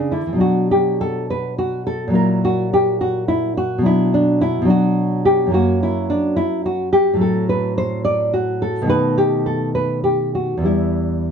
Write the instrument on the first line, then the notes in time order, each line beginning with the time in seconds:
nylon-string guitar
Already playing: C#3 D4
0.11 D3 E4
0.27 E3
0.33 B2 F#3
0.38 D4 F#4
0.71 G4
1.01 A4
1.30 B4
1.58 F#4
1.87 A4
2.08 A#2 F#3
2.14 E4 A#4
2.45 F#4
2.73 G4
3.01 F#4
3.28 E4
3.57 F#4
3.78 B2 F#3
3.83 D4 E4
4.14 D4
4.41 E4
4.62 B2 F#3
4.67 D4 F#4
5.25 G4
5.46 F#2 F#3
5.52 A#3 F#4
5.83 E4
6.10 D4
6.36 E4
6.66 F#4
6.93 G4
7.14 A2 F#3
7.19 C4 A4
7.49 B4
7.78 C5
8.05 D5
8.33 F#4
8.62 A4
8.82 B2 D#3
8.87 A3 B4
9.18 G4
9.46 A4
9.75 B4
10.04 G4
10.35 F#4
10.57 E2 E3
10.63 G3 E4